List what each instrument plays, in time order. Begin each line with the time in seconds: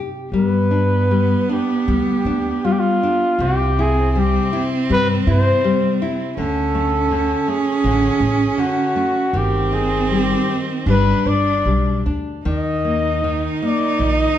Already playing: nylon-string guitar C3 G4
0.32 upright bass G2, nylon-string guitar G3, cello B3, muted trumpet B4
0.71 nylon-string guitar D4
1.11 nylon-string guitar G3
1.49 nylon-string guitar D4, muted trumpet G4
1.88 upright bass D2, nylon-string guitar G3
2.25 upright bass D2, nylon-string guitar D4
2.64 nylon-string guitar G3, muted trumpet F4
2.72 muted trumpet G4
2.79 muted trumpet F4
3.03 nylon-string guitar D4
3.39 upright bass C2, nylon-string guitar C3, cello C4, muted trumpet G4
3.79 nylon-string guitar E4, muted trumpet G#4
4.11 muted trumpet G#4
4.16 nylon-string guitar G3, muted trumpet G4
4.53 nylon-string guitar E4
4.89 upright bass G2, nylon-string guitar G3, muted trumpet B4
5.27 upright bass G2, nylon-string guitar E4, muted trumpet C5
5.64 nylon-string guitar G3
6.02 nylon-string guitar E4
6.37 upright bass D2, nylon-string guitar D3, cello C#4, muted trumpet A4
6.75 nylon-string guitar A3
7.11 nylon-string guitar D3
7.48 nylon-string guitar A3, muted trumpet G#4
7.84 upright bass A1, nylon-string guitar D3
8.20 upright bass A1, nylon-string guitar A3
8.58 nylon-string guitar D3, muted trumpet F#4
8.96 nylon-string guitar A3
9.33 upright bass G1, nylon-string guitar D#3, cello C4, muted trumpet G4
9.72 nylon-string guitar D#4, muted trumpet G#4
10.10 nylon-string guitar G3, muted trumpet G#4
10.21 muted trumpet G4
10.50 nylon-string guitar D#4
10.86 upright bass G1, nylon-string guitar G3, cello D4, muted trumpet B4
11.25 upright bass G1, nylon-string guitar D4, muted trumpet D5
11.65 upright bass B1, nylon-string guitar G3
12.06 upright bass D2, nylon-string guitar D4
12.45 upright bass D#2, nylon-string guitar D#3, cello D#4, muted trumpet D#5
12.85 nylon-string guitar A#3
13.24 nylon-string guitar D#3
13.62 nylon-string guitar A#3, muted trumpet D5
13.99 upright bass A#1, nylon-string guitar D#3
14.04 muted trumpet D#5